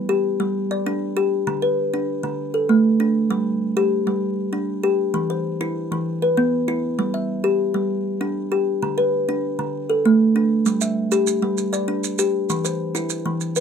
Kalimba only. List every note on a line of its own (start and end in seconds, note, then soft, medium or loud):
0.09 0.40 G4 medium
0.40 0.71 G3 medium
0.71 1.17 D5 medium
0.86 1.17 D4 medium
1.17 1.47 G4 medium
1.47 1.78 D3 medium
1.62 2.08 B4 medium
1.94 2.24 D4 medium
2.23 2.54 D3 medium
2.54 3.00 A4 medium
2.69 3.00 A3 medium
3.00 3.30 D4 medium
3.30 3.61 G3 medium
3.77 4.07 G4 medium
4.07 4.38 G3 medium
4.53 4.83 D4 medium
4.83 5.14 G4 medium
5.14 5.45 E3 medium
5.30 5.76 C5 medium
5.61 5.91 E4 medium
5.92 6.22 E3 medium
6.22 6.68 B4 medium
6.37 6.68 B3 medium
6.68 6.98 E4 medium
6.99 7.29 G3 medium
7.14 7.60 E5 medium
7.44 7.75 G4 medium
7.74 8.05 G3 medium
8.21 8.51 D4 medium
8.52 8.82 G4 medium
8.82 9.13 D3 medium
8.98 9.43 B4 medium
9.29 9.59 D4 medium
9.59 9.89 D3 medium
9.90 10.35 A4 medium
10.05 10.36 A3 medium
10.36 10.66 D4 medium
10.66 10.97 G3 medium
10.81 11.27 E5 medium
11.12 11.42 G4 medium
11.42 11.73 G3 medium
11.73 12.19 D5 medium
11.88 12.19 D4 medium
12.19 12.49 G4 medium
12.50 12.80 E3 medium
12.65 13.11 C5 medium
12.95 13.26 E4 medium
13.26 13.56 E3 medium
13.56 13.60 B4 medium